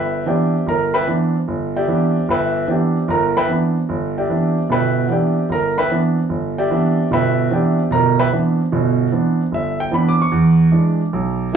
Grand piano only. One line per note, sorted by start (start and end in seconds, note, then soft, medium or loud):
0.00 0.21 G1 medium
0.00 0.25 B4 medium
0.00 0.25 E5 medium
0.00 0.25 G5 medium
0.00 0.25 B5 medium
0.26 0.54 E3 soft
0.26 0.55 B3 soft
0.26 0.55 C4 soft
0.26 0.55 D4 medium
0.26 0.65 G4 soft
0.26 0.65 D5 soft
0.26 0.65 E5 soft
0.26 0.64 G5 medium
0.66 1.02 G1 medium
0.66 0.94 A#4 medium
0.66 0.94 A#5 medium
0.94 1.07 B4 medium
0.94 1.07 E5 medium
0.94 1.07 G5 medium
0.94 1.07 B5 medium
1.07 1.35 E3 medium
1.07 1.35 B3 soft
1.07 1.35 C4 medium
1.07 1.35 D4 medium
1.48 1.82 G1 medium
1.76 2.26 G4 medium
1.76 2.25 D5 medium
1.76 2.25 E5 medium
1.76 2.25 G5 medium
1.87 2.16 E3 medium
1.87 2.16 B3 soft
1.87 2.16 C4 soft
1.87 2.16 D4 medium
2.28 2.63 G1 medium
2.28 2.67 B4 medium
2.28 2.67 E5 medium
2.28 2.67 G5 medium
2.28 2.67 B5 medium
2.68 2.96 E3 medium
2.68 2.96 B3 soft
2.68 2.96 C4 soft
2.68 2.96 D4 medium
2.68 3.07 G4 soft
2.68 3.07 D5 soft
2.68 3.07 E5 soft
2.68 3.07 G5 medium
3.08 3.43 G1 medium
3.08 3.36 A#4 medium
3.08 3.35 A#5 medium
3.37 3.49 B4 medium
3.37 3.49 E5 medium
3.37 3.49 G5 medium
3.37 3.49 B5 loud
3.48 3.76 E3 medium
3.48 3.76 B3 soft
3.48 3.76 C4 soft
3.48 3.76 D4 medium
3.89 4.24 G1 medium
4.18 4.67 G4 medium
4.18 4.67 D5 medium
4.18 4.67 E5 medium
4.18 4.66 G5 medium
4.29 4.57 E3 medium
4.29 4.57 B3 soft
4.29 4.57 C4 soft
4.29 4.58 D4 medium
4.69 5.04 G1 medium
4.69 5.04 B2 medium
4.69 5.08 B4 medium
4.69 5.08 E5 medium
4.69 5.08 G5 medium
4.69 5.08 B5 medium
5.07 5.37 E3 medium
5.07 5.37 B3 soft
5.07 5.37 C4 soft
5.07 5.38 D4 medium
5.07 5.10 F#5 soft
5.12 5.48 G4 medium
5.12 5.48 D5 soft
5.12 5.48 E5 soft
5.12 5.48 G5 medium
5.49 5.84 G1 medium
5.49 5.77 A#4 medium
5.49 5.77 A#5 medium
5.78 5.90 B4 medium
5.78 5.90 E5 medium
5.78 5.90 G5 medium
5.78 5.90 B5 loud
5.90 6.18 E3 medium
5.90 6.18 B3 medium
5.90 6.18 C4 soft
5.90 6.18 D4 medium
6.29 6.64 G1 medium
6.58 7.08 G4 medium
6.58 7.08 D5 medium
6.58 7.08 E5 medium
6.58 7.07 G5 medium
6.70 6.98 E3 medium
6.70 6.98 B3 soft
6.70 6.99 C4 soft
6.70 6.99 D4 medium
7.11 7.46 G1 medium
7.11 7.45 B2 medium
7.11 7.50 B4 medium
7.11 7.49 E5 medium
7.11 7.49 G5 medium
7.11 7.49 B5 medium
7.50 7.79 E3 medium
7.50 7.79 B3 soft
7.50 7.79 C4 medium
7.50 7.79 D4 medium
7.50 7.90 G4 soft
7.50 7.90 D5 soft
7.50 7.90 E5 soft
7.50 7.89 G5 medium
7.91 8.26 G1 medium
7.91 8.26 B2 medium
7.91 8.18 A#4 medium
7.91 8.17 A#5 medium
8.19 8.27 B4 medium
8.19 8.27 E5 medium
8.19 8.27 G5 medium
8.19 8.27 B5 loud
8.32 8.59 E3 medium
8.32 8.60 B3 soft
8.32 8.60 C4 soft
8.32 8.60 D4 medium
8.72 9.07 G1 medium
8.72 9.07 B2 medium
9.12 9.40 E3 medium
9.12 9.40 B3 medium
9.12 9.40 C4 soft
9.12 9.40 D4 medium
9.52 9.87 G1 medium
9.52 9.79 E5 medium
9.80 9.92 G5 medium
9.91 10.20 E3 medium
9.91 10.20 B3 medium
9.91 10.20 C4 medium
9.91 10.20 D4 medium
9.91 10.06 B5 medium
10.09 10.20 D6 medium
10.22 10.79 C#6 medium
10.32 10.67 E2 medium
10.72 11.00 E3 medium
10.72 11.00 G#3 medium
10.72 11.01 D4 medium
11.13 11.48 B1 medium
11.53 11.56 E3 medium
11.53 11.56 G#3 soft